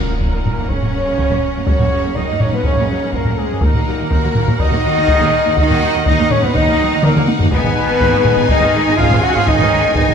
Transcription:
Already playing: timpani F#2, trombone section A#2, cello section A#3, violin section C#4 F#5, french horn section A#4, trumpet A#4, flute A#4, viola section A#4
0.09 double bass section F#2, viola section A#3
0.21 double bass section F#2, viola section C#4, violin section D#4, taiko
0.33 double bass section F#2, viola section A#3
0.45 double bass section F#2, viola section F#3, taiko low-mid
0.58 double bass section F#2, viola section A#3, taiko low-mid
0.68 double bass section F#2, trombone section C#3, cello section C#4, violin section C#4, viola section C#4, french horn section C#5, trumpet C#5, flute C#5, taiko
0.83 double bass section F#2, viola section A#3, taiko low-mid
0.95 double bass section F#2, viola section F#3
1.07 double bass section F#2, viola section A#3
1.18 double bass section F#2, viola section C#4, taiko
1.30 double bass section F#2, viola section A#3, taiko low-mid
1.55 double bass section F#2, viola section A#3
1.67 double bass section F#2, trombone section C#3, viola section C#4, cello section C#4, violin section F#4, french horn section C#5, trumpet C#5, flute C#5, taiko
1.80 double bass section F#2, viola section A#3, taiko low-mid
1.91 double bass section F#2, viola section F#3
2.03 double bass section F#2, viola section A#3
2.14 double bass section F#2, trombone section D#3, viola section C#4, cello section D#4, violin section D#4, french horn section D#5, trumpet D#5, flute D#5, taiko
2.28 double bass section F#2, viola section A#3
2.39 double bass section F#2, trombone section C#3, viola section F#3, cello section C#4, french horn section C#5, flute C#5, trumpet C#5, taiko low-mid
2.51 double bass section F#2, trombone section B2, viola section A#3, cello section B3, trumpet B4, french horn section B4, flute B4, taiko low-mid
2.65 double bass section F#2, trombone section C#3, cello section C#4, viola section C#4, flute C#5, trumpet C#5, french horn section C#5, taiko
2.77 double bass section F#2, viola section A#3, taiko low-mid
2.89 double bass section F#2, viola section F#3
3.01 double bass section F#2, viola section A#3
3.12 double bass section F#2, trombone section A#2, cello section A#3, violin section C#4, viola section C#4, french horn section A#4, trumpet A#4, flute A#4, taiko
3.25 double bass section F#2, viola section A#3, taiko low-mid
3.35 trombone section G#2, cello section G#3, french horn section G#4, flute G#4, trumpet G#4
3.50 double bass section F#2, viola section A#3
3.60 double bass section D#2, trombone section A#2, cello section A#3, violin section D#4 F#5, viola section D#4 A#4, french horn section A#4, trumpet A#4, flute A#4, taiko
3.74 double bass section D#2, viola section A#3, taiko low-mid
3.87 double bass section D#2, viola section F#3
3.99 double bass section D#2, viola section A#3
4.10 double bass section D#2, viola section D#4, violin section F#4, taiko
4.24 double bass section D#2, viola section A#3
4.35 double bass section D#2, viola section F#3, taiko low-mid
4.48 double bass section D#2, viola section A#3, taiko low-mid
4.60 double bass section D#2, trombone section D#3, cello section D#4, viola section D#4, violin section F#4, flute D#5, french horn section D#5, trumpet D#5, taiko
4.71 double bass section D#2, viola section A#3, taiko low-mid
4.84 double bass section D#2, viola section F#3
4.96 double bass section D#2, viola section A#3
5.08 double bass section D#2, viola section D#4, violin section G#4, taiko
5.20 double bass section D#2, viola section A#3, taiko low-mid
5.45 double bass section D#2, viola section A#3
5.57 double bass section D#2, trombone section D#3, cello section D#4, viola section D#4, violin section F#4, flute D#5, french horn section D#5, trumpet D#5, taiko
5.70 double bass section D#2, viola section A#3, taiko low-mid
5.82 double bass section D#2, viola section F#3
5.95 double bass section D#2, viola section A#3
6.05 double bass section D#2, trombone section D#3, cello section D#4, viola section D#4, violin section D#4, french horn section D#5, flute D#5, trumpet D#5, taiko
6.19 double bass section D#2, viola section A#3
6.29 double bass section D#2, trombone section C#3, viola section F#3, cello section C#4, french horn section C#5, flute C#5, trumpet C#5, taiko low-mid
6.42 double bass section D#2, trombone section B2, viola section A#3, cello section B3, flute B4, trumpet B4, french horn section B4, taiko low-mid
6.53 double bass section D#2, trombone section D#3, cello section D#4, viola section D#4, flute D#5, trumpet D#5, french horn section D#5, taiko
6.67 double bass section D#2, viola section A#3, taiko low-mid
6.81 double bass section D#2, viola section F#3
6.93 double bass section D#2, viola section A#3
7.03 double bass section D#2, trombone section A#2, cello section A#3, viola section D#4, flute A#4, trumpet A#4, french horn section A#4, taiko mid
7.16 double bass section D#2, viola section A#3, taiko mid
7.28 taiko high
7.40 double bass section D#2, viola section A#3, taiko low
7.51 double bass section G#1, trombone section B2, cello section B3, viola section D#4 G#4, french horn section B4, flute B4, trumpet B4, violin section G#5, taiko
7.64 double bass section G#1, viola section B3, taiko low-mid
7.77 double bass section G#1, viola section G#3
7.89 double bass section G#1, viola section B3
8.00 double bass section G#1, violin section D#4, viola section D#4, taiko
8.13 double bass section G#1, viola section B3
8.25 double bass section G#1, viola section G#3, taiko low-mid
8.37 double bass section G#1, viola section B3, taiko low-mid
8.48 double bass section G#1, trombone section D#3, cello section D#4, viola section D#4, french horn section D#5, flute D#5, trumpet D#5, taiko
8.61 double bass section G#1, viola section B3, taiko low-mid
8.74 double bass section G#1, viola section G#3
8.87 double bass section G#1, viola section B3
8.97 double bass section G#1, trombone section F3, violin section C#4, cello section F4, french horn section F5, flute F5, trumpet F5, taiko
9.01 viola section D#4
9.10 double bass section G#1, viola section B3, taiko low-mid
9.21 trombone section F#3, french horn section F#4, cello section F#4, flute F#5, trumpet F#5
9.33 double bass section G#1, trombone section F3, viola section B3, cello section F4, french horn section F5, flute F5, trumpet F5
9.46 double bass section G#1, trombone section D#3, cello section D#4, viola section D#4, flute D#5, french horn section D#5, trumpet D#5, taiko
9.59 double bass section G#1, viola section B3, taiko low-mid
9.72 double bass section G#1, viola section G#3
9.84 double bass section G#1, viola section B3
9.94 double bass section G#1, trombone section D#3, violin section B3, cello section D#4, viola section D#4, flute D#5, french horn section D#5, trumpet D#5, taiko
10.09 double bass section G#1, viola section B3

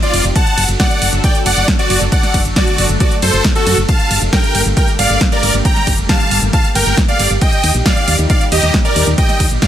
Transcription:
Already playing: analog synth pad C3 F3 G3 D#4 G4
0.02 supersaw synth F4 D5, grand piano D5, closed hi-hat
0.13 fm bass F1, open hi-hat, ride
0.24 fm bass F1, closed hi-hat
0.36 analog synth pad D3 F#3 A3 F#4 A4, supersaw synth F#5 A5, grand piano A5, kick, closed hi-hat, ride
0.47 closed hi-hat
0.58 fm bass F#1, open hi-hat, ride
0.69 fm bass F#1, closed hi-hat
0.80 supersaw synth D5 F#5, grand piano F#5, kick, snare, closed hi-hat, ride
0.91 closed hi-hat
1.02 fm bass F#1, open hi-hat, ride
1.13 fm bass F#1, closed hi-hat
1.24 supersaw synth D5 G5, grand piano G5, kick, closed hi-hat, ride
1.35 closed hi-hat
1.46 fm bass F#1, supersaw synth D5 F#5, grand piano F#5, open hi-hat, ride
1.57 fm bass F#1, closed hi-hat
1.68 kick, snare, closed hi-hat, ride
1.79 supersaw synth F#4 D5, grand piano D5, closed hi-hat
1.90 fm bass F#1, open hi-hat, ride
2.01 fm bass F#1, closed hi-hat
2.12 supersaw synth D5 F#5, grand piano F#5, kick, closed hi-hat, ride
2.23 snare, closed hi-hat
2.34 fm bass F#1, kick, open hi-hat, ride
2.45 fm bass F#1, closed hi-hat
2.56 supersaw synth F#4 D5, grand piano D5, kick, snare, closed hi-hat, ride
2.67 closed hi-hat
2.78 fm bass F#1, open hi-hat, ride
2.89 fm bass F#1, closed hi-hat
3.00 supersaw synth F#4 D5, grand piano D5, kick, closed hi-hat, ride
3.11 closed hi-hat
3.22 fm bass F#2, supersaw synth A4 C5, grand piano C5, open hi-hat, ride
3.33 fm bass F#1, closed hi-hat
3.44 kick, snare, closed hi-hat, ride
3.56 supersaw synth F#4 A4, grand piano A4, closed hi-hat
3.67 fm bass F#2, open hi-hat, ride
3.78 fm bass F#1, closed hi-hat
3.89 analog synth pad G3 A#3 G4, supersaw synth F5 A5, grand piano A5, kick, closed hi-hat, ride
4.00 closed hi-hat
4.11 fm bass G1, open hi-hat, ride
4.22 fm bass F1, closed hi-hat
4.33 supersaw synth A#4 G5, grand piano G5, kick, snare, closed hi-hat, ride
4.44 closed hi-hat
4.55 fm bass G1, open hi-hat, ride
4.66 fm bass G1, closed hi-hat
4.77 supersaw synth A#4 G5, grand piano G5, kick, closed hi-hat, ride
4.88 closed hi-hat
4.99 fm bass G1, supersaw synth D5 F5, grand piano F5, open hi-hat, ride
5.10 fm bass G1, closed hi-hat
5.21 kick, snare, closed hi-hat, ride
5.32 supersaw synth A#4 D5, grand piano D5, closed hi-hat
5.43 fm bass G1, open hi-hat, ride
5.54 fm bass G1, closed hi-hat
5.65 supersaw synth G5 A#5, grand piano A#5, kick, closed hi-hat, ride
5.76 snare, closed hi-hat
5.87 fm bass G1, kick, open hi-hat, ride
5.98 fm bass F1, closed hi-hat
6.09 supersaw synth F5 A5, grand piano A5, kick, snare, closed hi-hat, ride
6.20 closed hi-hat
6.31 fm bass G1, open hi-hat, ride
6.42 fm bass G1, closed hi-hat
6.53 supersaw synth F5 A5, grand piano A5, kick, closed hi-hat, ride
6.64 closed hi-hat
6.75 fm bass G1, supersaw synth A#4 G5, grand piano G5, open hi-hat, ride
6.86 fm bass G1, closed hi-hat
6.97 kick, snare, closed hi-hat, ride
7.08 supersaw synth D5 F5, grand piano F5, closed hi-hat
7.19 fm bass G1, open hi-hat, ride
7.30 fm bass G1, closed hi-hat
7.41 analog synth pad A#2 D#3 G3 D#4, supersaw synth D#5 G5, grand piano G5, kick, closed hi-hat, ride
7.53 closed hi-hat
7.64 fm bass D#2, open hi-hat, ride
7.75 fm bass A#1, closed hi-hat
7.85 supersaw synth D5 F5, grand piano F5, kick, snare, closed hi-hat, ride
7.97 closed hi-hat
8.08 fm bass D#2, open hi-hat, ride
8.19 fm bass D#2, closed hi-hat
8.30 supersaw synth D5 F5, grand piano F5, kick, closed hi-hat, ride
8.41 closed hi-hat
8.52 fm bass D#2, supersaw synth G4 D#5, grand piano D#5, open hi-hat, ride
8.63 fm bass D#2, closed hi-hat
8.74 kick, snare, closed hi-hat, ride
8.85 supersaw synth A#4 D5, grand piano D5, closed hi-hat
8.96 fm bass D#2, open hi-hat, ride
9.07 fm bass D#2, closed hi-hat
9.18 supersaw synth D#5 G5, grand piano G5, kick, closed hi-hat, ride
9.29 snare, closed hi-hat
9.40 fm bass D#2, kick, open hi-hat, ride
9.51 fm bass A#1, closed hi-hat
9.62 supersaw synth D5 F5, grand piano F5, kick, snare, closed hi-hat, ride

